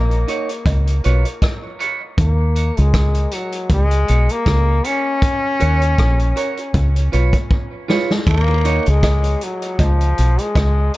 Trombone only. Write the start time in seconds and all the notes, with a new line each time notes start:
Already playing: A#3
2.20 A#3
2.79 G#3
3.34 F#3
3.72 G#3
4.31 A#3
4.86 C#4
8.29 A#3
8.88 G#3
9.43 F#3
9.81 F3
10.40 G#3